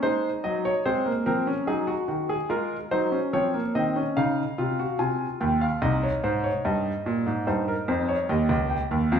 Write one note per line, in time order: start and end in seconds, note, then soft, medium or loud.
0.03 0.28 G#3 medium
0.03 0.83 D#4 medium
0.03 0.28 C5 medium
0.44 0.70 F#3 medium
0.44 0.64 D#5 medium
0.65 0.85 C#5 medium
0.85 1.11 G#3 medium
0.85 1.06 C4 medium
0.85 1.11 C5 medium
1.06 1.26 A#3 medium
1.26 1.52 F3 medium
1.26 1.46 C4 medium
1.26 1.52 A#4 medium
1.47 1.67 C#4 medium
1.67 1.93 F#3 medium
1.67 1.93 D#4 medium
1.67 1.88 G#4 medium
1.87 2.07 F#4 medium
2.08 2.34 D#3 medium
2.08 2.34 F#4 medium
2.29 2.50 G#4 medium
2.49 2.76 G#3 medium
2.49 2.76 F4 medium
2.49 2.76 A#4 medium
2.91 3.17 F#3 medium
2.91 3.12 D#4 medium
2.91 3.17 C5 medium
3.12 3.32 C#4 medium
3.33 3.59 F3 medium
3.33 3.53 C4 medium
3.33 3.59 C#5 medium
3.54 3.74 A#3 medium
3.75 4.01 D#3 medium
3.75 3.95 C4 medium
3.75 4.01 D#5 medium
3.96 4.16 C#4 medium
4.17 4.42 C#3 medium
4.17 4.42 D#4 medium
4.17 4.97 F5 medium
4.58 4.84 C3 medium
4.58 4.78 F4 medium
4.79 4.99 F#4 medium
4.99 5.25 C3 medium
4.99 5.79 F4 medium
4.99 5.25 G#5 medium
5.41 5.67 D#2 medium
5.41 5.61 G5 medium
5.61 5.82 F5 medium
5.82 6.08 C2 medium
5.82 7.43 D#4 medium
5.82 6.02 D#5 medium
6.03 6.23 C#5 medium
6.24 6.49 G#2 medium
6.24 6.44 C5 medium
6.44 6.64 C#5 medium
6.65 6.91 G2 medium
6.65 7.45 D#5 medium
7.06 7.26 A#2 medium
7.26 7.47 G#2 medium
7.47 7.73 G2 medium
7.47 8.27 D#4 medium
7.47 7.67 C5 medium
7.68 7.88 A#4 medium
7.88 8.14 F2 medium
7.88 8.09 C5 medium
8.09 8.29 C#5 medium
8.29 8.50 D#2 medium
8.29 9.11 G4 medium
8.29 8.56 D#5 medium
8.49 8.76 C#2 medium
8.70 8.96 G5 medium
8.91 9.12 D#2 medium
9.12 9.20 F2 medium
9.12 9.20 F4 medium
9.12 9.20 F5 medium